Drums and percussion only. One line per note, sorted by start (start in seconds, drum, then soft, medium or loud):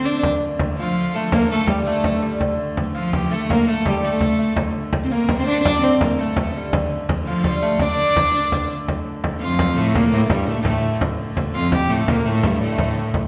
0.23 frame drum medium
0.42 frame drum soft
0.59 frame drum medium
1.32 frame drum medium
1.50 frame drum soft
1.67 frame drum medium
2.04 frame drum medium
2.41 frame drum medium
2.59 frame drum soft
2.77 frame drum medium
3.13 frame drum medium
3.50 frame drum medium
3.86 frame drum medium
4.04 frame drum soft
4.21 frame drum medium
4.39 frame drum soft
4.56 frame drum medium
4.75 frame drum soft
4.93 frame drum medium
5.29 frame drum medium
5.65 frame drum medium
5.83 frame drum soft
6.01 frame drum medium
6.36 frame drum medium
6.73 frame drum medium
6.91 frame drum soft
7.09 frame drum medium
7.44 frame drum medium
7.79 frame drum medium
8.16 frame drum medium
8.52 frame drum medium
8.88 frame drum medium
9.06 frame drum soft
9.24 frame drum medium
9.59 frame drum medium
9.95 frame drum medium
10.12 frame drum soft
10.30 frame drum medium
10.65 frame drum medium
11.01 frame drum medium
11.19 frame drum soft
11.37 frame drum medium
11.72 frame drum medium
12.08 frame drum medium
12.25 frame drum soft
12.43 frame drum medium
12.78 frame drum medium
13.14 frame drum medium